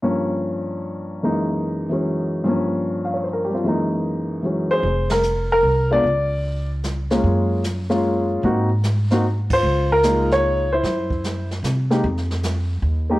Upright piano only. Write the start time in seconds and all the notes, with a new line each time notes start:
0.03 G2 F3 A#3 C#4
1.23 F#2 E3 G#3 A#3 D#4
1.89 E3 F#3 G#3 C#4
2.44 G2 F3 A#3
2.49 C#4
3.05 F5
3.14 C#5
3.24 C5
3.33 A#4
3.45 G4
3.49 G3 C4
3.55 F4
3.64 F#2 E3 G#3 A#3
3.69 D#4
4.43 E3 F#3 G#3 C#4
4.71 G#4 C5
5.12 A#4
5.52 A#4
5.91 G#3 B3 D4 F4 D5
7.11 G#3 A#3 C#4 F4
7.89 G#3 A#3 C#4 F4
8.44 A#3 C4 D#4 F#4
9.11 A#3 C4 D#4 F#4
9.53 F4 C5
9.92 A#4
10.04 G#3 A#3 D#4 F4
10.33 C#5
10.73 E4 C5
11.90 G#3 A#3 D#4 G4
13.10 G#3 A#3 D#4 G4